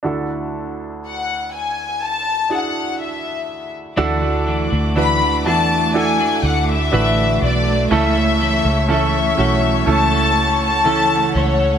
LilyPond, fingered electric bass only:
\new Staff \with { instrumentName = "Fingered electric bass" } { \clef bass \time 4/4 \key d \lydian \tempo 4 = 61 r1 | d,8. d,8. e,4 d,8 a,,8 b,,8 | cis,8. cis,8. b,,8 cis,4. cis,8 | }